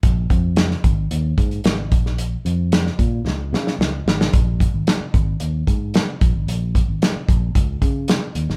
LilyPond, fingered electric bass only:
\new Staff \with { instrumentName = "Fingered electric bass" } { \clef bass \time 4/4 \key aes \mixolydian \tempo 4 = 112 bes,,8 f,4 aes,,8 ees,8 aes,8 aes,,8 bes,,8~ | bes,,8 f,4 bes,8 des,8 des8 des,8 aes,,8 | bes,,8. aes,,16 r8 aes,,8 ees,8 aes,8. r16 bes,,16 aes,,16 | bes,,8. aes,,16 r8 bes,,8 des,8 des8. r16 ees,16 aes,,16 | }